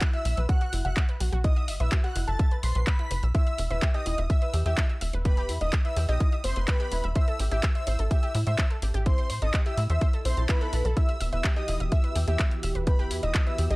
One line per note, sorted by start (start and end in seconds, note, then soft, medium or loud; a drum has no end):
0.01 0.07 E4 medium
0.01 0.07 E5 medium
0.01 kick loud
0.01 clap loud
0.01 closed hi-hat soft
0.13 0.40 E5 loud
0.13 0.17 E5 medium
0.13 0.40 E6 medium
0.13 0.17 E6 medium
0.13 closed hi-hat soft
0.25 0.35 B1 loud
0.25 0.28 E5 loud
0.25 0.28 E6 medium
0.25 open hi-hat loud
0.37 0.47 B1 medium
0.37 0.45 B4 medium
0.37 0.45 B5 medium
0.37 closed hi-hat soft
0.49 0.55 F#4 medium
0.49 0.76 F#5 loud
0.49 0.55 F#5 medium
0.49 0.76 F#6 loud
0.49 kick loud
0.49 closed hi-hat soft
0.61 0.66 F#4 loud
0.61 0.66 F#5 medium
0.61 closed hi-hat soft
0.73 0.83 F#1 medium
0.73 0.78 E4 medium
0.73 0.78 E5 medium
0.73 open hi-hat loud
0.85 0.95 F#1 medium
0.85 0.88 E5 medium
0.85 1.02 F#5 medium
0.85 0.88 E6 medium
0.85 1.03 F#6 loud
0.85 closed hi-hat soft
0.97 1.00 E5 loud
0.97 1.00 E6 medium
0.97 kick loud
0.97 clap loud
0.97 closed hi-hat soft
1.09 1.17 B4 medium
1.09 1.17 B5 medium
1.09 closed hi-hat soft
1.20 1.30 B1 medium
1.20 1.26 F#4 medium
1.20 1.26 F#5 medium
1.20 open hi-hat loud
1.32 1.70 B1 medium
1.32 1.38 F#4 loud
1.32 1.38 F#5 medium
1.32 closed hi-hat soft
1.44 1.50 E4 medium
1.44 1.71 D#5 loud
1.44 1.50 E5 medium
1.44 1.71 D#6 loud
1.44 kick loud
1.44 closed hi-hat soft
1.56 1.60 E5 medium
1.56 1.60 E6 medium
1.56 closed hi-hat soft
1.68 1.78 F#1 medium
1.68 1.71 E5 loud
1.68 1.71 E6 medium
1.68 open hi-hat loud
1.80 1.90 B1 medium
1.80 1.88 B4 medium
1.80 1.98 E5 medium
1.80 1.88 B5 medium
1.80 1.98 E6 loud
1.80 closed hi-hat soft
1.92 1.97 F#4 medium
1.92 1.97 F#5 medium
1.92 kick loud
1.92 clap loud
1.92 closed hi-hat soft
2.04 2.09 F#4 loud
2.04 2.22 F#5 medium
2.04 2.09 F#5 medium
2.04 2.22 F#6 medium
2.04 closed hi-hat soft
2.16 2.26 F#1 loud
2.16 2.21 E4 medium
2.16 2.21 E5 medium
2.16 open hi-hat loud
2.28 2.37 F#1 medium
2.28 2.31 E5 medium
2.28 2.54 A5 loud
2.28 2.31 E6 medium
2.28 2.54 A6 loud
2.28 closed hi-hat soft
2.39 2.43 E5 loud
2.39 2.43 E6 medium
2.39 kick loud
2.39 closed hi-hat soft
2.51 2.60 B4 medium
2.51 2.60 B5 medium
2.51 closed hi-hat soft
2.63 2.73 B1 loud
2.63 2.67 B4 medium
2.63 2.67 B5 medium
2.63 2.81 C6 medium
2.63 2.81 C7 loud
2.63 open hi-hat loud
2.75 2.85 B1 medium
2.75 2.81 B4 medium
2.75 2.81 B5 medium
2.75 closed hi-hat soft
2.87 3.23 B5 loud
2.87 2.93 E6 medium
2.87 3.23 B6 loud
2.87 kick loud
2.87 clap loud
2.87 closed hi-hat soft
2.99 3.04 E4 medium
2.99 3.04 E5 medium
2.99 closed hi-hat soft
3.11 3.21 F#1 medium
3.11 3.14 B4 medium
3.11 3.14 B5 medium
3.11 open hi-hat loud
3.23 3.33 B1 medium
3.23 3.28 E6 medium
3.23 closed hi-hat soft
3.35 3.40 E4 medium
3.35 3.61 E5 loud
3.35 3.40 E5 medium
3.35 3.61 E6 loud
3.35 kick loud
3.35 closed hi-hat soft
3.47 3.50 E5 medium
3.47 3.50 E6 medium
3.47 closed hi-hat soft
3.58 3.68 E1 loud
3.58 3.62 E5 medium
3.58 3.62 E6 medium
3.58 open hi-hat loud
3.70 3.80 E1 medium
3.70 3.79 B4 medium
3.70 3.88 E5 medium
3.70 3.79 B5 medium
3.70 3.88 E6 medium
3.70 closed hi-hat soft
3.82 3.88 G4 medium
3.82 3.88 G5 medium
3.82 kick loud
3.82 clap loud
3.82 closed hi-hat soft
3.94 4.00 G4 loud
3.94 4.21 D#5 loud
3.94 4.00 G5 medium
3.94 4.21 D#6 medium
3.94 closed hi-hat soft
4.06 4.16 E1 loud
4.06 4.12 E4 medium
4.06 4.12 E5 medium
4.06 open hi-hat loud
4.18 4.28 E1 medium
4.18 4.21 E5 medium
4.18 4.21 E6 medium
4.18 closed hi-hat soft
4.30 4.33 E5 loud
4.30 4.57 E5 loud
4.30 4.33 E6 medium
4.30 4.57 E6 loud
4.30 kick loud
4.30 closed hi-hat soft
4.42 4.50 B4 medium
4.42 4.50 B5 medium
4.42 closed hi-hat soft
4.54 4.64 E2 loud
4.54 4.59 G4 medium
4.54 4.59 G5 medium
4.54 open hi-hat loud
4.66 4.75 E2 medium
4.66 4.71 G4 loud
4.66 4.84 E5 loud
4.66 4.71 G5 medium
4.66 4.83 E6 loud
4.66 closed hi-hat soft
4.77 4.83 E4 medium
4.77 kick loud
4.77 clap loud
4.77 closed hi-hat soft
4.89 4.93 E5 medium
4.89 4.93 E6 medium
4.89 closed hi-hat soft
5.01 5.11 E1 medium
5.01 5.05 E5 loud
5.01 5.05 E6 medium
5.01 open hi-hat loud
5.13 5.50 E1 medium
5.13 5.21 B4 medium
5.13 5.21 B5 medium
5.13 closed hi-hat soft
5.25 5.31 G4 medium
5.25 5.52 B4 loud
5.25 5.31 G5 medium
5.25 5.52 B5 loud
5.25 kick loud
5.25 closed hi-hat soft
5.37 5.43 G4 loud
5.37 5.43 G5 medium
5.37 closed hi-hat soft
5.49 5.59 E2 loud
5.49 5.54 E4 medium
5.49 5.54 E5 medium
5.49 open hi-hat loud
5.61 5.71 E1 medium
5.61 5.79 D#5 medium
5.61 5.64 E5 medium
5.61 5.79 D#6 medium
5.61 5.64 E6 medium
5.61 closed hi-hat soft
5.73 5.76 E5 loud
5.73 5.76 E6 medium
5.73 kick loud
5.73 clap loud
5.73 closed hi-hat soft
5.85 5.93 B4 medium
5.85 6.03 E5 medium
5.85 5.93 B5 medium
5.85 6.03 E6 medium
5.85 closed hi-hat soft
5.96 6.06 E2 loud
5.96 6.02 G4 medium
5.96 6.02 G5 medium
5.96 open hi-hat medium
6.09 6.18 B1 medium
6.09 6.14 G4 loud
6.09 6.35 D#5 loud
6.09 6.14 G5 medium
6.09 6.35 D#6 loud
6.09 closed hi-hat soft
6.20 6.26 E4 medium
6.20 6.26 E5 medium
6.20 kick loud
6.20 closed hi-hat soft
6.32 6.36 E5 medium
6.32 6.36 E6 medium
6.32 closed hi-hat soft
6.44 6.54 F#1 loud
6.44 6.62 C5 medium
6.44 6.47 E5 loud
6.44 6.62 C6 loud
6.44 6.47 E6 medium
6.44 open hi-hat loud
6.56 6.66 F#1 medium
6.56 6.64 B4 medium
6.56 6.64 B5 medium
6.56 closed hi-hat soft
6.68 6.74 G4 medium
6.68 7.04 B4 loud
6.68 6.74 G5 medium
6.68 7.04 B5 loud
6.68 kick loud
6.68 clap loud
6.68 closed hi-hat soft
6.80 6.85 G4 loud
6.80 6.85 G5 medium
6.80 closed hi-hat soft
6.92 7.02 E1 medium
6.92 6.97 E4 medium
6.92 6.97 E5 medium
6.92 open hi-hat medium
7.04 7.14 E1 medium
7.04 7.07 E5 medium
7.04 7.07 E6 medium
7.04 closed hi-hat soft
7.15 7.19 C5 loud
7.15 7.42 E5 loud
7.15 7.19 C6 medium
7.15 7.42 E6 loud
7.15 kick loud
7.15 closed hi-hat soft
7.28 7.36 A4 medium
7.28 7.36 A5 medium
7.28 closed hi-hat soft
7.39 7.49 A1 medium
7.39 7.45 G4 medium
7.39 7.45 G5 medium
7.39 open hi-hat loud
7.51 7.61 A1 medium
7.51 7.57 G4 loud
7.51 7.69 E5 medium
7.51 7.57 G5 medium
7.51 7.69 E6 medium
7.51 closed hi-hat soft
7.63 7.69 E4 medium
7.63 7.69 E5 medium
7.63 kick loud
7.63 clap loud
7.63 closed hi-hat soft
7.75 7.78 C5 medium
7.75 8.02 E5 loud
7.75 7.78 C6 medium
7.75 8.02 E6 medium
7.75 closed hi-hat soft
7.87 7.97 A1 loud
7.87 7.90 C5 loud
7.87 7.90 C6 medium
7.87 open hi-hat medium
7.99 8.09 A1 medium
7.99 8.07 A4 medium
7.99 8.07 A5 medium
7.99 closed hi-hat soft
8.11 8.16 G4 medium
8.11 8.38 E5 loud
8.11 8.16 G5 medium
8.11 8.38 E6 loud
8.11 kick loud
8.11 closed hi-hat soft
8.23 8.28 G4 loud
8.23 8.28 G5 medium
8.23 closed hi-hat soft
8.35 8.45 A2 medium
8.35 8.40 E4 medium
8.35 8.40 E5 medium
8.35 open hi-hat loud
8.47 8.57 A2 medium
8.47 8.50 C5 medium
8.47 8.64 E5 medium
8.47 8.50 C6 medium
8.47 8.64 E6 medium
8.47 closed hi-hat soft
8.58 8.62 C5 loud
8.58 8.62 C6 medium
8.58 kick loud
8.58 clap loud
8.58 closed hi-hat soft
8.70 8.78 A4 medium
8.70 8.78 A5 medium
8.70 closed hi-hat soft
8.82 8.92 A1 medium
8.82 8.88 G4 medium
8.82 8.88 G5 medium
8.82 open hi-hat loud
8.94 9.31 A1 medium
8.94 9.00 G4 loud
8.94 9.00 G5 medium
8.94 closed hi-hat soft
9.06 9.12 E4 medium
9.06 9.33 C5 medium
9.06 9.12 E5 medium
9.06 9.33 C6 loud
9.06 kick loud
9.06 closed hi-hat soft
9.18 9.21 C5 medium
9.18 9.21 C6 medium
9.18 closed hi-hat soft
9.30 9.40 A2 loud
9.30 9.33 C5 loud
9.30 9.33 C6 medium
9.30 open hi-hat loud
9.42 9.52 A1 medium
9.42 9.50 A4 medium
9.42 9.60 D#5 medium
9.42 9.50 A5 medium
9.42 9.60 D#6 medium
9.42 closed hi-hat soft
9.54 9.59 G4 medium
9.54 9.59 G5 medium
9.54 kick loud
9.54 clap loud
9.54 closed hi-hat soft
9.66 9.71 G4 loud
9.66 9.84 E5 medium
9.66 9.71 G5 medium
9.66 9.84 E6 medium
9.66 closed hi-hat soft
9.77 9.87 A2 loud
9.77 9.83 E4 medium
9.77 9.83 E5 medium
9.77 open hi-hat medium
9.90 9.99 E2 medium
9.90 9.93 C5 medium
9.90 10.16 E5 loud
9.90 9.93 C6 medium
9.90 10.16 E6 loud
9.90 closed hi-hat soft
10.01 10.05 C5 loud
10.01 10.05 C6 medium
10.01 kick loud
10.01 closed hi-hat soft
10.01 swell medium
10.13 10.21 A4 medium
10.13 10.21 A5 medium
10.13 closed hi-hat soft
10.25 10.35 B1 loud
10.25 10.43 C5 medium
10.25 10.28 E5 medium
10.25 10.43 C6 loud
10.25 10.28 E6 medium
10.25 open hi-hat loud
10.37 10.47 B1 medium
10.37 10.43 A5 medium
10.37 10.43 A6 medium
10.37 closed hi-hat soft
10.49 10.52 E4 medium
10.49 10.85 B4 loud
10.49 10.52 E5 medium
10.49 10.85 B5 loud
10.49 kick loud
10.49 clap loud
10.49 closed hi-hat soft
10.61 10.64 A4 loud
10.61 10.64 A5 medium
10.61 closed hi-hat soft
10.73 10.83 B1 medium
10.73 10.78 A4 medium
10.73 10.78 A5 medium
10.73 open hi-hat medium
10.85 10.95 B1 medium
10.85 10.88 A4 loud
10.85 10.88 A5 medium
10.85 closed hi-hat soft
10.97 13.76 E3 medium
10.97 13.76 B3 medium
10.97 11.02 E4 medium
10.97 13.76 F#4 medium
10.97 13.76 G4 loud
10.97 11.02 E5 medium
10.97 11.23 E5 loud
10.97 11.23 E6 loud
10.97 kick loud
10.97 closed hi-hat soft
11.09 11.12 E5 medium
11.09 11.12 E6 medium
11.09 closed hi-hat soft
11.20 11.30 E1 medium
11.20 11.24 E5 loud
11.20 11.24 E6 medium
11.20 open hi-hat loud
11.32 11.42 E1 medium
11.32 11.40 B4 medium
11.32 11.50 E5 medium
11.32 11.40 B5 medium
11.32 11.50 E6 loud
11.32 closed hi-hat soft
11.44 11.50 G4 medium
11.44 11.50 G5 medium
11.44 kick loud
11.44 clap loud
11.44 closed hi-hat soft
11.56 11.62 G4 loud
11.56 11.83 D#5 loud
11.56 11.62 G5 medium
11.56 11.83 D#6 medium
11.56 closed hi-hat soft
11.68 11.78 E1 loud
11.68 11.74 E4 medium
11.68 11.74 E5 medium
11.68 open hi-hat medium
11.80 11.90 E1 medium
11.80 11.83 E5 medium
11.80 11.83 E6 medium
11.80 closed hi-hat soft
11.92 12.18 E5 loud
11.92 11.95 E5 loud
11.92 11.95 E6 medium
11.92 12.19 E6 loud
11.92 kick loud
11.92 closed hi-hat soft
12.04 12.12 B4 medium
12.04 12.12 B5 medium
12.04 closed hi-hat soft
12.16 12.26 E2 medium
12.16 12.21 G4 medium
12.16 12.21 G5 medium
12.16 open hi-hat loud
12.28 12.37 E2 medium
12.28 12.33 G4 loud
12.28 12.45 E5 loud
12.28 12.33 G5 medium
12.28 12.45 E6 medium
12.28 closed hi-hat soft
12.39 12.45 E4 medium
12.39 12.45 E5 medium
12.39 kick loud
12.39 clap loud
12.39 closed hi-hat soft
12.51 12.55 E5 medium
12.51 12.55 E6 medium
12.51 closed hi-hat soft
12.63 12.73 E1 medium
12.63 12.67 E5 loud
12.63 12.66 E6 medium
12.63 open hi-hat loud
12.75 13.12 E1 medium
12.75 12.83 B4 medium
12.75 12.83 B5 medium
12.75 closed hi-hat soft
12.87 12.92 G4 medium
12.87 13.14 B4 loud
12.87 12.92 G5 medium
12.87 13.14 B5 loud
12.87 kick loud
12.87 closed hi-hat soft
12.99 13.04 G4 loud
12.99 13.04 G5 medium
12.99 closed hi-hat soft
13.11 13.21 E2 loud
13.11 13.16 E4 medium
13.11 13.16 E5 medium
13.11 open hi-hat loud
13.23 13.33 E1 medium
13.23 13.41 D#5 medium
13.23 13.26 E5 medium
13.23 13.41 D#6 medium
13.23 13.26 E6 medium
13.23 closed hi-hat soft
13.35 13.38 E5 loud
13.35 13.38 E6 medium
13.35 kick loud
13.35 clap loud
13.35 closed hi-hat soft
13.47 13.55 B4 medium
13.47 13.64 E5 medium
13.47 13.55 B5 medium
13.47 13.65 E6 medium
13.47 closed hi-hat soft
13.58 13.69 E2 loud
13.58 13.64 G4 medium
13.58 13.64 G5 medium
13.58 open hi-hat loud
13.70 13.76 B1 medium
13.70 13.76 G4 loud
13.70 13.76 D#5 loud
13.70 13.76 G5 medium
13.70 13.76 D#6 loud
13.70 closed hi-hat soft